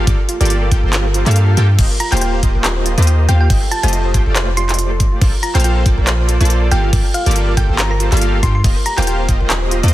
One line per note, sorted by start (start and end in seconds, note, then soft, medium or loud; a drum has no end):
0.07 0.16 G1 medium
0.07 0.18 A#3 medium
0.07 0.18 F4 medium
0.07 0.18 G4 medium
0.07 0.18 A4 medium
0.07 0.18 D5 medium
0.07 kick loud
0.07 closed hi-hat medium
0.19 0.25 A4 medium
0.29 0.36 F4 loud
0.29 closed hi-hat medium
0.41 0.70 G1 loud
0.41 0.69 A#3 medium
0.41 0.69 F4 medium
0.41 0.69 G4 medium
0.41 0.69 A4 medium
0.41 0.49 A#4 medium
0.41 0.69 D5 medium
0.41 closed hi-hat soft
0.45 closed hi-hat medium
0.50 0.55 F4 loud
0.50 closed hi-hat medium
0.62 0.71 A#4 loud
0.72 0.81 G1 medium
0.72 0.82 A#3 medium
0.72 0.83 F4 medium
0.72 0.82 F4 medium
0.72 0.82 G4 medium
0.72 0.82 A4 medium
0.72 0.82 G5 loud
0.72 kick medium
0.72 closed hi-hat medium
0.83 1.24 G1 loud
0.83 1.24 A#3 medium
0.83 1.24 F4 medium
0.83 1.24 G4 medium
0.83 0.87 A4 loud
0.83 1.24 A4 medium
0.83 1.24 C5 medium
0.93 1.04 F4 medium
0.93 clap loud
0.93 closed hi-hat medium
1.05 1.08 A#4 medium
1.14 1.25 F4 loud
1.14 closed hi-hat medium
1.26 1.55 G2 loud
1.26 1.55 A#3 medium
1.26 1.55 F4 medium
1.26 1.55 G4 medium
1.26 1.55 A4 medium
1.26 1.35 D5 medium
1.26 1.55 F5 loud
1.26 clap soft
1.26 closed hi-hat medium
1.31 closed hi-hat medium
1.36 1.40 F4 medium
1.36 closed hi-hat medium
1.48 1.54 A4 medium
1.57 1.77 G2 loud
1.57 1.68 A#3 medium
1.57 1.68 F4 medium
1.57 1.68 G4 medium
1.57 1.68 A4 medium
1.57 1.68 G5 medium
1.57 closed hi-hat medium
1.69 1.78 F4 medium
1.79 1.87 D#1 loud
1.79 1.89 A#3 medium
1.79 1.89 F4 medium
1.79 1.90 F4 medium
1.79 1.89 G4 medium
1.79 1.89 C5 medium
1.79 1.89 D#5 medium
1.79 kick loud
1.79 closed hi-hat medium
1.79 crash medium
1.91 1.96 A#4 medium
2.00 2.07 F4 loud
2.00 2.10 A#5 medium
2.00 closed hi-hat medium
2.12 2.41 D#1 loud
2.12 2.41 A#3 medium
2.12 2.41 F4 medium
2.12 2.41 G4 medium
2.12 2.41 C5 medium
2.12 2.21 C5 medium
2.12 2.41 F5 loud
2.12 2.18 G5 medium
2.12 clap soft
2.12 closed hi-hat medium
2.17 closed hi-hat medium
2.21 2.26 F4 loud
2.21 2.29 G5 medium
2.21 closed hi-hat medium
2.33 2.42 C5 loud
2.43 2.52 D#1 loud
2.43 2.53 A#3 medium
2.43 2.53 F4 medium
2.43 2.53 G4 medium
2.43 2.53 C5 medium
2.43 2.53 D#5 medium
2.43 kick medium
2.43 closed hi-hat medium
2.55 2.95 D#1 medium
2.55 2.95 A#3 medium
2.55 2.95 F4 medium
2.55 2.95 G4 medium
2.55 2.58 A#4 loud
2.55 2.95 C5 medium
2.55 2.95 D#5 medium
2.64 2.75 F4 medium
2.64 clap loud
2.64 closed hi-hat medium
2.76 2.80 C5 medium
2.86 2.97 F4 loud
2.86 closed hi-hat medium
2.98 3.27 D#2 loud
2.98 3.26 A#3 medium
2.98 3.26 F4 medium
2.98 3.26 G4 medium
2.98 3.26 C5 medium
2.98 3.26 D#5 medium
2.98 3.06 D#5 medium
2.98 closed hi-hat medium
3.02 closed hi-hat medium
3.07 3.12 F4 medium
3.07 closed hi-hat medium
3.19 3.25 A#4 medium
3.29 3.48 D#2 loud
3.29 3.48 A#3 medium
3.29 3.48 F4 medium
3.29 3.39 F4 medium
3.29 3.48 G4 medium
3.29 3.48 C5 medium
3.29 3.48 F5 medium
3.29 3.38 G5 medium
3.29 closed hi-hat medium
3.40 3.49 F4 medium
3.40 3.47 G5 medium
3.50 3.58 F1 loud
3.50 3.61 A3 medium
3.50 3.61 F4 medium
3.50 3.61 G4 medium
3.50 3.61 C5 medium
3.50 3.61 D#5 medium
3.50 3.58 G5 medium
3.50 kick loud
3.50 closed hi-hat medium
3.50 crash medium
3.62 3.68 A4 medium
3.71 3.79 F4 loud
3.71 3.81 A5 loud
3.71 closed hi-hat medium
3.83 4.12 F1 loud
3.83 4.12 A3 medium
3.83 4.12 F4 medium
3.83 4.12 G4 medium
3.83 4.12 C5 medium
3.83 3.92 C5 medium
3.83 4.12 D#5 medium
3.83 3.99 A5 medium
3.83 closed hi-hat medium
3.88 closed hi-hat medium
3.93 3.97 F4 loud
3.93 closed hi-hat medium
4.05 4.14 C5 loud
4.14 4.24 F1 loud
4.14 4.25 A3 medium
4.14 4.25 F4 medium
4.14 4.25 G4 medium
4.14 4.25 C5 medium
4.14 4.25 G5 loud
4.14 kick medium
4.14 closed hi-hat medium
4.26 5.20 F1 loud
4.26 5.19 A3 medium
4.26 5.19 F4 medium
4.26 5.19 G4 medium
4.26 4.30 A4 loud
4.26 5.19 C5 medium
4.26 5.19 D5 loud
4.36 4.47 F4 medium
4.36 clap loud
4.36 closed hi-hat medium
4.48 4.51 C5 medium
4.57 4.68 F4 loud
4.57 4.91 C6 medium
4.57 closed hi-hat medium
4.69 4.78 D#5 medium
4.69 clap soft
4.69 closed hi-hat medium
4.74 closed hi-hat medium
4.79 4.83 F4 medium
4.79 closed hi-hat medium
4.91 4.96 A4 medium
5.00 5.11 F4 medium
5.00 kick medium
5.00 closed hi-hat medium
5.12 5.20 F4 medium
5.21 5.30 A#1 loud
5.21 5.32 A#3 medium
5.21 5.32 F4 medium
5.21 5.33 F4 medium
5.21 5.32 A4 medium
5.21 5.32 C5 medium
5.21 5.32 D5 loud
5.21 kick loud
5.21 closed hi-hat medium
5.21 crash soft
5.33 5.39 A#4 medium
5.43 5.50 F4 loud
5.43 5.53 A#5 loud
5.43 closed hi-hat medium
5.55 5.84 A#1 loud
5.55 5.84 A#3 medium
5.55 5.83 F4 medium
5.55 5.84 A4 medium
5.55 5.64 C5 medium
5.55 5.84 C5 medium
5.55 5.84 F5 loud
5.55 5.61 G5 medium
5.55 clap soft
5.55 closed hi-hat soft
5.60 closed hi-hat medium
5.64 5.69 F4 loud
5.64 5.72 G5 medium
5.64 closed hi-hat medium
5.76 5.85 C5 loud
5.86 5.95 A#1 loud
5.86 5.96 A#3 medium
5.86 5.97 F4 medium
5.86 5.96 F4 medium
5.86 5.96 A4 medium
5.86 5.96 C5 medium
5.86 5.96 D5 medium
5.86 kick medium
5.86 closed hi-hat medium
5.98 6.38 A#1 loud
5.98 6.38 A#3 medium
5.98 6.38 F4 medium
5.98 6.38 A4 medium
5.98 6.01 A#4 loud
5.98 6.38 C5 medium
5.98 6.38 D5 medium
6.07 6.18 F4 medium
6.07 clap loud
6.07 closed hi-hat medium
6.19 6.23 C5 medium
6.29 6.40 F4 loud
6.29 closed hi-hat medium
6.41 6.70 A#1 loud
6.41 6.69 A#3 medium
6.41 6.69 F4 medium
6.41 6.69 A4 medium
6.41 6.69 C5 medium
6.41 6.69 D5 medium
6.41 6.49 D5 medium
6.41 closed hi-hat medium
6.45 closed hi-hat medium
6.50 6.54 F4 medium
6.50 closed hi-hat medium
6.62 6.68 A#4 medium
6.71 6.91 G1 loud
6.71 6.91 A#3 medium
6.71 6.82 F4 medium
6.71 6.91 F4 medium
6.71 6.91 G4 medium
6.71 6.91 A4 medium
6.71 6.91 F5 medium
6.71 6.81 G5 medium
6.71 closed hi-hat medium
6.83 6.92 F4 medium
6.93 7.01 G1 loud
6.93 7.04 A#3 medium
6.93 7.04 F4 medium
6.93 7.04 G4 medium
6.93 7.04 A4 medium
6.93 7.04 D5 medium
6.93 kick loud
6.93 closed hi-hat medium
6.93 crash soft
7.05 7.11 A4 medium
7.14 7.22 F4 loud
7.14 7.31 F5 loud
7.14 closed hi-hat medium
7.26 7.55 G1 loud
7.26 7.55 A#3 medium
7.26 7.55 F4 medium
7.26 7.55 G4 medium
7.26 7.55 A4 medium
7.26 7.35 A#4 medium
7.26 7.55 D5 medium
7.26 closed hi-hat soft
7.31 closed hi-hat medium
7.36 7.40 F4 loud
7.36 closed hi-hat medium
7.48 7.56 A#4 loud
7.57 7.67 G1 loud
7.57 7.67 A#3 medium
7.57 7.68 F4 medium
7.57 7.67 F4 medium
7.57 7.67 G4 medium
7.57 7.67 A4 medium
7.57 7.74 G5 medium
7.57 7.67 G5 loud
7.57 kick medium
7.57 closed hi-hat medium
7.69 8.10 G1 medium
7.69 8.10 A#3 medium
7.69 8.10 F4 medium
7.69 8.10 G4 medium
7.69 7.73 A4 loud
7.69 8.10 A4 medium
7.69 8.10 C5 medium
7.79 7.90 F4 medium
7.79 7.86 A#5 medium
7.79 clap loud
7.79 closed hi-hat medium
7.91 7.94 A#4 medium
7.91 7.97 A#5 medium
8.00 8.11 F4 loud
8.00 closed hi-hat medium
8.12 8.41 G1 loud
8.12 8.41 A#3 medium
8.12 8.41 F4 medium
8.12 8.41 G4 medium
8.12 8.41 A4 medium
8.12 8.21 D5 medium
8.12 8.41 F5 loud
8.12 clap soft
8.12 closed hi-hat medium
8.17 closed hi-hat medium
8.21 8.26 F4 medium
8.21 closed hi-hat medium
8.33 8.39 A4 medium
8.43 8.62 G2 loud
8.43 8.54 A#3 medium
8.43 8.54 F4 medium
8.43 8.54 G4 medium
8.43 8.54 A4 medium
8.43 8.54 G5 loud
8.43 8.51 C6 medium
8.43 kick medium
8.43 closed hi-hat medium
8.55 8.63 F4 medium
8.55 8.61 C6 medium
8.64 8.73 D#1 loud
8.64 8.75 A#3 medium
8.64 8.75 F4 medium
8.64 8.75 G4 medium
8.64 8.75 C5 medium
8.64 8.75 D#5 loud
8.64 kick loud
8.64 closed hi-hat medium
8.64 crash soft
8.76 8.82 A#4 medium
8.86 8.90 G4 medium
8.86 8.95 A#5 medium
8.86 closed hi-hat medium
8.98 9.27 D#1 loud
8.98 9.26 A#3 medium
8.98 9.26 F4 medium
8.98 9.26 G4 medium
8.98 9.06 C5 medium
8.98 9.26 C5 medium
8.98 9.26 F5 loud
8.98 9.04 G5 medium
8.98 clap soft
8.98 closed hi-hat soft
9.02 closed hi-hat medium
9.07 9.12 F4 loud
9.07 9.15 G5 medium
9.07 closed hi-hat medium
9.19 9.28 C5 loud
9.29 9.38 D#1 loud
9.29 9.39 A#3 medium
9.29 9.40 F4 medium
9.29 9.39 F4 medium
9.29 9.39 G4 medium
9.29 9.39 C5 medium
9.29 9.39 D#5 medium
9.29 kick medium
9.29 closed hi-hat medium
9.41 9.81 D#1 loud
9.41 9.81 A#3 medium
9.41 9.81 F4 medium
9.41 9.81 G4 medium
9.41 9.44 A#4 loud
9.41 9.81 C5 medium
9.41 9.81 D#5 medium
9.50 9.61 F4 medium
9.50 clap loud
9.50 closed hi-hat medium
9.62 9.66 C5 medium
9.71 9.83 F4 loud
9.71 closed hi-hat medium
9.83 9.94 D#2 loud
9.83 9.94 A#3 medium
9.83 9.94 F4 medium
9.83 9.94 G4 medium
9.83 9.94 C5 medium
9.83 9.94 D#5 medium
9.83 9.92 D#5 medium
9.83 closed hi-hat soft
9.88 closed hi-hat medium